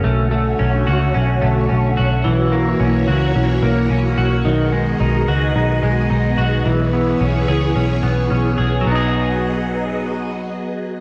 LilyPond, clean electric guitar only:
\new Staff \with { instrumentName = "Clean electric guitar" } { \time 4/4 \key b \major \tempo 4 = 109 a8 a8 cis'8 fis'8 cis'8 a8 cis'8 fis'8 | e8 ais8 cis'8 fis'8 cis'8 ais8 cis'8 fis'8 | dis8 gis8 dis'8 fis'8 dis'8 gis8 dis'8 fis'8 | e8 b8 cis'8 gis'8 cis'8 b8 cis'8 gis'8 |
<fis b dis' gis'>1 | }